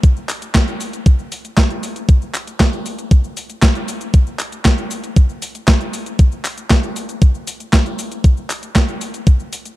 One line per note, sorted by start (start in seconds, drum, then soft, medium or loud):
0.04 kick loud
0.04 closed hi-hat medium
0.04 cabasa soft
0.17 cabasa soft
0.29 clap medium
0.29 open hi-hat loud
0.29 cabasa medium
0.42 closed hi-hat medium
0.42 cabasa soft
0.55 kick loud
0.55 snare loud
0.55 clap loud
0.55 closed hi-hat medium
0.55 cabasa soft
0.68 closed hi-hat soft
0.68 cabasa soft
0.81 open hi-hat medium
0.81 cabasa medium
0.93 closed hi-hat medium
0.93 cabasa soft
1.06 kick loud
1.06 closed hi-hat medium
1.06 cabasa soft
1.19 cabasa soft
1.32 open hi-hat loud
1.32 cabasa medium
1.45 closed hi-hat medium
1.45 cabasa soft
1.57 kick loud
1.57 snare loud
1.57 clap medium
1.57 closed hi-hat medium
1.57 cabasa soft
1.70 closed hi-hat soft
1.70 cabasa soft
1.83 open hi-hat medium
1.83 cabasa medium
1.96 closed hi-hat medium
1.96 cabasa soft
2.09 kick loud
2.09 closed hi-hat medium
2.09 cabasa soft
2.22 cabasa soft
2.34 clap medium
2.34 open hi-hat loud
2.34 cabasa medium
2.47 closed hi-hat medium
2.47 cabasa soft
2.60 kick loud
2.60 snare loud
2.60 clap medium
2.60 closed hi-hat medium
2.60 cabasa soft
2.73 closed hi-hat soft
2.73 cabasa soft
2.86 open hi-hat medium
2.86 cabasa medium
2.99 closed hi-hat medium
2.99 cabasa soft
3.11 kick loud
3.11 closed hi-hat medium
3.11 cabasa soft
3.24 cabasa soft
3.37 open hi-hat loud
3.37 cabasa medium
3.50 closed hi-hat medium
3.50 cabasa soft
3.62 kick loud
3.62 snare loud
3.62 clap medium
3.62 closed hi-hat medium
3.62 cabasa soft
3.75 closed hi-hat soft
3.75 cabasa soft
3.88 open hi-hat medium
3.88 cabasa medium
4.01 closed hi-hat medium
4.01 cabasa soft
4.14 kick loud
4.14 closed hi-hat medium
4.14 cabasa soft
4.27 cabasa soft
4.39 clap medium
4.39 open hi-hat loud
4.39 cabasa medium
4.52 closed hi-hat medium
4.52 cabasa soft
4.65 kick loud
4.65 snare loud
4.65 clap medium
4.65 closed hi-hat medium
4.65 cabasa soft
4.78 closed hi-hat soft
4.78 cabasa soft
4.91 open hi-hat medium
4.91 cabasa medium
5.04 closed hi-hat medium
5.04 cabasa soft
5.16 kick loud
5.16 closed hi-hat medium
5.16 cabasa soft
5.29 cabasa soft
5.42 open hi-hat loud
5.42 cabasa medium
5.55 closed hi-hat medium
5.55 cabasa soft
5.68 kick loud
5.68 snare loud
5.68 clap medium
5.68 closed hi-hat medium
5.68 cabasa soft
5.81 closed hi-hat soft
5.81 cabasa soft
5.93 open hi-hat medium
5.93 cabasa medium
6.06 closed hi-hat soft
6.06 cabasa soft
6.19 kick loud
6.19 closed hi-hat medium
6.19 cabasa soft
6.32 cabasa soft
6.45 clap medium
6.45 open hi-hat loud
6.45 cabasa medium
6.58 closed hi-hat medium
6.58 cabasa soft
6.70 kick loud
6.70 snare loud
6.70 clap medium
6.70 closed hi-hat medium
6.70 cabasa soft
6.83 closed hi-hat soft
6.83 cabasa soft
6.96 open hi-hat medium
6.96 cabasa medium
7.09 closed hi-hat medium
7.09 cabasa soft
7.22 kick loud
7.22 closed hi-hat medium
7.22 cabasa soft
7.35 cabasa soft
7.47 open hi-hat loud
7.47 cabasa medium
7.60 closed hi-hat medium
7.60 cabasa soft
7.73 kick loud
7.73 snare loud
7.73 clap medium
7.73 closed hi-hat medium
7.73 cabasa soft
7.86 closed hi-hat soft
7.86 cabasa soft
7.99 open hi-hat medium
7.99 cabasa medium
8.12 closed hi-hat medium
8.12 cabasa soft
8.24 kick loud
8.24 closed hi-hat medium
8.24 cabasa soft
8.37 cabasa soft
8.50 clap medium
8.50 open hi-hat loud
8.50 cabasa medium
8.63 closed hi-hat medium
8.63 cabasa soft
8.76 kick loud
8.76 snare loud
8.76 clap medium
8.76 closed hi-hat medium
8.76 cabasa soft
8.88 closed hi-hat soft
8.88 cabasa soft
9.01 open hi-hat loud
9.01 cabasa medium
9.14 closed hi-hat medium
9.14 cabasa soft
9.27 kick loud
9.27 closed hi-hat medium
9.27 cabasa soft
9.40 cabasa soft
9.53 open hi-hat loud
9.53 cabasa medium
9.65 closed hi-hat medium
9.65 cabasa soft